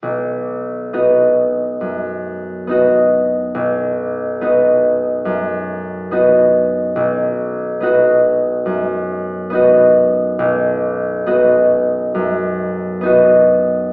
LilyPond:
\new Staff \with { instrumentName = "Harp" } { \time 4/4 \key b \major \tempo 4 = 69 b,,4 <b dis' fis'>4 fis,4 <b dis' fis'>4 | b,,4 <b dis' fis'>4 fis,4 <b dis' fis'>4 | b,,4 <b dis' fis'>4 fis,4 <b dis' fis'>4 | b,,4 <b dis' fis'>4 fis,4 <b dis' fis'>4 | }